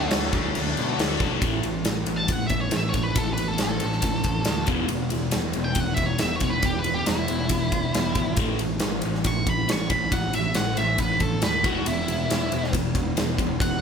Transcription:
Already playing: D3 F#3 A3 D4 F#4 A4
0.11 D2 D3 D4 F#4, snare, crash
0.15 A4
0.33 D2 A3 D4, kick, crash
0.37 D3
0.55 D2, crash
0.77 B2 D4 F#4 A4, crash
0.98 D2 D3 A3 D4 F#4 A4, snare, crash
1.19 B1 D4 F#4 A4, kick, crash
1.41 A1 A2 E3 A3, kick, ride
1.63 A1 A2 E3, ride
1.85 A1 A2 E3, snare, ride
2.06 A1 A2 E3, ride
2.17 A5
2.28 A1 A2 E3 F#5, kick, ride
2.47 A1 A2 E5, kick, ride
2.51 E3
2.61 C#5
2.71 A1 A2 E3, snare, ride
2.77 E5
2.89 C#5
2.94 A1 A2 E3, kick, ride
3.03 B4
3.15 A1 A2 E3 A4, kick, ride
3.33 B4
3.38 A2 E3, ride
3.48 A4
3.58 A1 A2 E3, snare, ride
3.64 A4
3.80 A1 A2 E3, ride
3.92 snare
4.02 A1 A2 E3, kick, ride
4.24 A1 A2 E3, kick, ride
4.45 D2 A2 E3, snare, ride
4.67 E1 E2 B2 E3 G#3 B3, kick, ride
4.88 E1 E2 B2 E3 G#3, ride
5.10 E1 E2 B2 E3 G#3, ride
5.31 E1 E2 B2 E3 G#3, snare, ride
5.53 E1 E2 B2 E3 G#3, ride
5.64 G5
5.75 E1 E2 B2 E3 G#3, kick, ride
5.80 F#5
5.94 E1 E2 E5, kick, ride
5.98 B2 E3 G#3
6.06 C#5
6.18 E1 E2 B2 E3 G#3 E5, snare, ride
6.36 C#5
6.40 E1 E2 B2 E3 G#3, kick, ride
6.50 B4
6.63 E1 E2 B2 E3 G#3 G4, kick, ride
6.79 B4
6.84 E2 B2 E3 G#3, ride
6.94 G4
7.06 E1 E2 B2 E3 G#3 E4, snare, ride
7.27 E1 E2 B2 E3 G#3, ride
7.49 E1 E2 B2 E3 G#3, kick, ride
7.72 E1 E2 B2 E3 G#3, kick, ride
7.94 E1 E2 B2 E3 G#3, snare, ride
8.15 G#1 E2 B2 E3 G#3, kick, ride
8.37 A1 A2 E3, kick, ride
8.41 A3
8.59 A1 A2 E3, ride
8.79 A1, snare, ride
8.84 A2 E3
9.02 A1 A2, ride
9.06 E3
9.15 snare
9.24 A1 A2 E3 C#6, kick, ride
9.47 A1 A2 E3 B5, kick, ride
9.68 A1 A2 E3, snare, ride
9.72 C#6
9.90 A1 A2 E3 B5, kick, ride
10.12 A1 A2 E3 F#5, kick, ride
10.33 A2 E3 E5, ride
10.54 A1 A2 E3 F#5, snare, ride
10.77 A1 A2 E3 E5, ride
10.98 A1 A2 E3 B4, kick, ride
11.20 A1 A2 E3 A4, kick, ride
11.42 D#2 A2 E3 B4, snare, ride
11.63 E1 E2 B2 E3 G#3 B3 F#4, kick, ride
11.86 E1 E2 B2 E3 G#3 E4, ride
12.07 E1 E2 B2 E3 G#3, ride
12.29 E1 E2 B2 E3 G#3, snare, ride
12.51 E1 E2 B2 E3 G#3, ride
12.64 snare
12.73 E1 E2 B2 E3 G#3, kick, ride
12.95 E1 E2 B2 E3 G#3, kick, ride
13.17 E1 E2 B2 E3 G#3, snare, ride
13.38 E1 E2 B2 E3 G#3, kick, ride
13.60 E1 E2 B2 E3 G#3 F#5, kick, ride

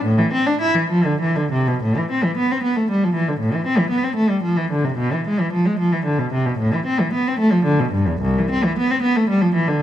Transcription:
0.04 A2
0.19 E3
0.33 C4
0.47 D4
0.61 E4
0.74 E3
0.90 F3
1.05 D3
1.21 E3
1.36 D3
1.52 C3
1.67 B2
1.83 A2
1.98 E3
2.11 C4
2.24 E3
2.37 B3
2.52 C4
2.63 B3
2.76 A3
2.91 G3
3.04 F3
3.15 E3
3.29 D3
3.40 A2
3.54 E3
3.67 C4
3.78 E3
3.91 B3
4.03 C4
4.16 A3
4.30 G3
4.43 F3
4.57 E3
4.71 D3
4.85 C3
4.98 B2
5.13 E3
5.28 G#3
5.40 E3
5.53 F3
5.66 G#3
5.79 F3
5.93 E3
6.05 D3
6.19 B2
6.33 C3
6.46 B2
6.59 A2
6.74 E3
6.86 C4
7.00 E3
7.13 B3
7.28 C4
7.39 A3
7.52 F3
7.65 D3
7.80 B2
7.92 G2
8.07 E2
8.21 C2
8.38 E3
8.51 C4
8.64 E3
8.78 B3
8.91 C4
9.02 B3
9.16 A3
9.30 G3
9.42 F3
9.55 E3
9.68 D3

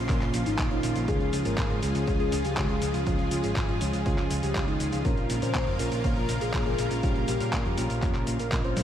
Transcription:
Already playing: C#3 F3 A#3 F4 C6
0.09 A#1 A#3 C#4 F4 C#5, kick, clap, closed hi-hat, cabasa
0.21 A#1, clap, closed hi-hat
0.34 A#1, closed hi-hat, cabasa
0.46 G#1 D#4, closed hi-hat, cabasa
0.58 A#1 A#3 C#4 F4 D#5, kick, clap, closed hi-hat, cabasa
0.71 A#1 A#3 C#4 D#4 F4 C#5, closed hi-hat
0.83 A#1, closed hi-hat, cabasa
0.96 A#1, closed hi-hat, cabasa
1.08 C#2 G#3 C#4 F4 G#4 C#5, kick, closed hi-hat, cabasa
1.21 C#2, closed hi-hat
1.33 C#2, closed hi-hat, cabasa
1.45 G#1 G#3 C#4 F4 A#4 C#5, closed hi-hat, cabasa
1.58 G#1, kick, clap, closed hi-hat, cabasa
1.70 G#1, closed hi-hat
1.83 C#2 G#3 C#4 F4 G#4 C#5, closed hi-hat, cabasa
1.95 C#2, closed hi-hat, cabasa
2.07 C#2 G#3 C#4 F4 C#5, kick, closed hi-hat, cabasa
2.20 C#2 G#4, closed hi-hat
2.32 C#2, closed hi-hat, cabasa
2.44 C#2 G4, closed hi-hat, cabasa
2.57 C#2 G#3 C#4 F4 C#5, kick, clap, closed hi-hat, cabasa
2.69 C#2 G#4, closed hi-hat
2.82 C#2, closed hi-hat, cabasa
2.94 C#2 G#3 C#4 F4 F5, closed hi-hat, cabasa
3.06 C#2 G#3 C#4 F4 C#5, kick, closed hi-hat, cabasa
3.19 C#2, closed hi-hat
3.31 C#2 F4, closed hi-hat, cabasa
3.44 G#1 G#3 C#4 F4 C#5, closed hi-hat, cabasa
3.56 G#1, kick, clap, closed hi-hat, cabasa
3.69 G#1 F4, closed hi-hat
3.81 C#2 G#3 C#4 F4 C#5, closed hi-hat, cabasa
3.93 C#2, closed hi-hat, cabasa
4.06 C#2 G#3 C#4 F4 C#5, kick, closed hi-hat, cabasa
4.18 C#2, clap, closed hi-hat
4.31 C#2, closed hi-hat, cabasa
4.43 C#2 G4, closed hi-hat, cabasa
4.55 C#2 G#3 C#4 F4 C#5, kick, clap, closed hi-hat, cabasa
4.68 C#2 D#4, closed hi-hat
4.80 C#2, closed hi-hat, cabasa
4.93 C#2 G#3 C#4 F4 F5, closed hi-hat, cabasa
5.05 A#1 C#3 A#3 C#4 F4 A#4 C#5, kick, closed hi-hat, cabasa
5.17 A#1, closed hi-hat
5.30 A#1, closed hi-hat, cabasa
5.42 A#2 A#3 C#4 F4 C5 C#5, closed hi-hat, cabasa
5.55 A#2, kick, clap, closed hi-hat, cabasa
5.67 F2, closed hi-hat
5.79 A#1 A#3 C#4 F4 A#4 C#5, closed hi-hat, cabasa
5.92 A#1, closed hi-hat, cabasa
6.04 A#1 A#3 C#4 F4 C#5, kick, closed hi-hat, cabasa
6.16 A#1 A#4, closed hi-hat
6.29 A#1, closed hi-hat, cabasa
6.41 A#1 G#4, closed hi-hat, cabasa
6.54 A#1 A#3 C#4 F4 C#5, kick, clap, closed hi-hat, cabasa
6.66 A#1 G#4, closed hi-hat
6.78 A#1, closed hi-hat, cabasa
6.91 A#1 A#3 C#4 F4 F5, closed hi-hat, cabasa
7.03 A#1 A#3 C#4 F4 G4 C#5, kick, closed hi-hat, cabasa
7.16 A#1, closed hi-hat
7.28 A#1 G4, closed hi-hat, cabasa
7.40 A#2 A#3 C#4 F4 C#5, closed hi-hat, cabasa
7.53 A#2, kick, clap, closed hi-hat, cabasa
7.65 F2 G4, closed hi-hat
7.78 A#1 A#3 C#4 F4 C#5, closed hi-hat, cabasa
7.90 A#1, closed hi-hat, cabasa
8.02 F2 A#3 C#4 F4 C#5, kick, clap, closed hi-hat, cabasa
8.15 A#1, clap, closed hi-hat
8.27 A#1, closed hi-hat, cabasa
8.40 A#1 A#4, closed hi-hat, cabasa
8.52 A#1 A#3 C#4 F4 D#5, kick, clap, closed hi-hat, cabasa
8.64 A#1 A#3 C#4 F4 C5 C#5, closed hi-hat
8.77 A#1, snare, closed hi-hat, cabasa

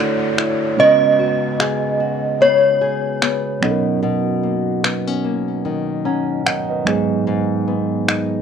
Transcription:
Already playing: D3 A3 D4 E4 F#4 C#5, downlifter
0.00 F#4 A4
0.38 E4, finger snap
0.77 C#3 G#3 B3 C#4 F#4 B4 D#5
1.19 F#4
1.59 G#4, finger snap
2.00 F#4
2.41 B3 C#5
2.81 G#4
3.22 B3, finger snap
3.61 B2 F#3 B3 C#4 D#4 A4, finger snap
3.71 A#4
4.02 B2
4.43 A#3
4.84 B3, finger snap
5.07 C#4
5.24 A#3
5.65 D#3
6.05 C#4 F#5 A#5
6.46 D#3 D#5 F#5, finger snap
6.70 B4 D#5
6.85 G#2 F#3 G#3 B3 D#4 G#4, finger snap
7.27 G#2
7.68 B3
8.08 D#4, finger snap

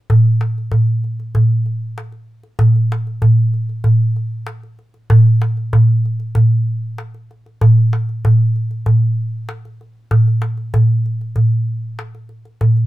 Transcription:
0.10 darbuka dum
0.25 darbuka ka
0.41 darbuka tek
0.58 darbuka ka
0.72 darbuka dum
1.04 darbuka ka
1.20 darbuka ka
1.35 darbuka dum
1.66 darbuka ka
1.98 darbuka tek
2.12 darbuka ka
2.43 darbuka ka
2.59 darbuka dum
2.76 darbuka ka
2.92 darbuka tek
3.07 darbuka ka
3.22 darbuka dum
3.54 darbuka ka
3.69 darbuka ka
3.84 darbuka dum
4.16 darbuka ka
4.47 darbuka tek
4.63 darbuka ka
4.79 darbuka ka
4.94 darbuka ka
5.10 darbuka dum
5.26 darbuka ka
5.42 darbuka tek
5.57 darbuka ka
5.73 darbuka dum
6.05 darbuka ka
6.20 darbuka ka
6.35 darbuka dum
6.98 darbuka tek
7.14 darbuka ka
7.31 darbuka ka
7.46 darbuka ka
7.61 darbuka dum
7.78 darbuka ka
7.93 darbuka tek
8.09 darbuka ka
8.25 darbuka dum
8.56 darbuka ka
8.71 darbuka ka
8.86 darbuka dum
9.49 darbuka tek
9.65 darbuka ka
9.81 darbuka ka
10.11 darbuka dum
10.27 darbuka ka
10.42 darbuka tek
10.57 darbuka ka
10.74 darbuka dum
11.06 darbuka ka
11.21 darbuka ka
11.36 darbuka dum
11.99 darbuka tek
12.15 darbuka ka
12.29 darbuka ka
12.45 darbuka ka
12.61 darbuka dum
12.77 darbuka ka

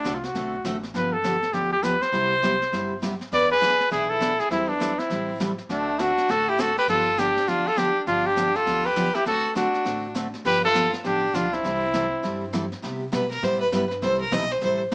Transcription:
Already playing: D4
0.04 C2 D3 A3 C4 F#4 A4, snare, hi-hat pedal
0.15 F4
0.24 F#4, snare
0.34 B1 D3 A3 C4 F#4 A4, brush sweep, snare
0.64 A1 D3 A3 C4 F#4 A4, snare, hi-hat pedal
0.83 snare
0.94 G1 D3 F3 B3 D4 G4 B4, brush sweep, snare
1.13 A4
1.24 D3 F3 B3 D4 G4, snare, hi-hat pedal
1.42 snare
1.53 D2 D3 F3 B3 D4 G4, brush sweep, snare
1.72 G4
1.83 D3 F3 B3 D4 G4 B4, snare, hi-hat pedal
2.02 C5, snare
2.12 C2 C3 G3 B3 E4 G4, brush sweep, snare
2.42 C3 G3 B3 E4 G4, snare, hi-hat pedal
2.62 snare
2.72 G1 C3 G3 B3 E4 G4, brush sweep, snare
3.02 C3 G3 B3 E4 G4, snare, hi-hat pedal
3.21 snare
3.32 E2 E3 B3 D4 G#4 B4 D5, brush sweep, snare
3.51 G#4 B4
3.61 E3 B3 D4 G#4, snare, hi-hat pedal
3.80 snare
3.91 B1 E3 B3 D4 E4 G#4, brush sweep, snare
4.09 E4 A4
4.20 E3 B3 D4 G#4, snare, hi-hat pedal
4.39 E4 G#4, snare
4.50 E2 E3 G3 C4 E4 A4, brush sweep, snare
4.68 B3 D4
4.80 E3 G3 C4 E4 A4, snare, hi-hat pedal
4.98 C4 E4, snare
5.10 A2 E3 G3 C4 E4 A4, brush sweep, snare
5.40 E3 G3 C4 E4 A4, snare, hi-hat pedal
5.58 snare
5.69 D2 D3 A3 C4 D4 F#4 A4, brush sweep, snare
5.99 D3 A3 C4 D4 F#4 A4, snare, hi-hat pedal
6.18 snare
6.29 A1 D3 A3 C4 F#4 A4, brush sweep, snare
6.48 E4 G4
6.58 D3 A3 C4 F#4 A4, snare, hi-hat pedal
6.77 G4 B4, snare
6.88 G1 D3 F3 B3 D4 F4 G4 A4, brush sweep, snare
7.17 D3 F3 B3 D4 G4, snare, hi-hat pedal
7.37 snare
7.47 D2 D3 F3 B3 D4 F4 G4, brush sweep, snare
7.67 F4 A4
7.77 D3 F3 B3 D4 G4, snare, hi-hat pedal
8.07 G1 D3 F3 B3 D4 F4 G4, brush sweep, snare
8.26 D4 G4
8.36 D3 F3 B3 D4 G4, snare, hi-hat pedal
8.55 F4 A4, snare
8.66 D2 D3 F3 B3 D4 G4, brush sweep, snare
8.85 G4 B4
8.96 D3 F3 B3 D4 G4, snare, hi-hat pedal
9.15 E4 G4, snare
9.25 D2 D3 A3 C4 F#4 A4, brush sweep, snare
9.55 D3 A3 C4 D4 F#4 A4, snare, hi-hat pedal
9.74 snare
9.85 A1 D3 A3 C4 F#4 A4, brush sweep, snare
10.14 D3 A3 C4 F#4 A4, snare, hi-hat pedal
10.34 snare
10.45 G1 D3 F3 B3 D4 G4 B4, brush sweep, snare
10.64 F4 A4
10.74 D3 F3 B3 D4 G4, snare, hi-hat pedal
10.93 snare
11.04 A1 D3 F3 B3 D4 G4, brush sweep, snare
11.34 B1 D3 F3 B3 D4 F4 G4, snare, hi-hat pedal
11.53 C4 E4, snare
11.63 C2 C3 E3 G3 C4 E4 A4, brush sweep, snare
11.94 C3 E3 G3 C4 E4 A4, snare, hi-hat pedal
12.23 G2 C3 E3 G3 C4 E4 A4, brush sweep, snare
12.53 C3 E3 G3 C4 E4 A4, snare, hi-hat pedal
12.72 snare
12.82 C3 G3 B3 E4 G4, brush sweep, snare
13.12 B2 C3 G3 B3 E4 G4 B4, snare, hi-hat pedal
13.31 A#4, snare
13.42 A2 C3 G3 B3 E4 G4 C5, brush sweep, snare
13.61 B4
13.72 G2 C3 G3 B3 E4 G4 B4, snare, hi-hat pedal
13.91 snare
14.02 C2 C3 E3 G3 C4 E4 A4 C5, brush sweep, snare
14.21 A#4
14.31 B1 C3 E3 G3 C4 E4 A4 D#5, snare, hi-hat pedal
14.50 C5, snare
14.61 A1 C3 E3 G3 C4 E4 A4 C5, brush sweep, snare
14.91 C3

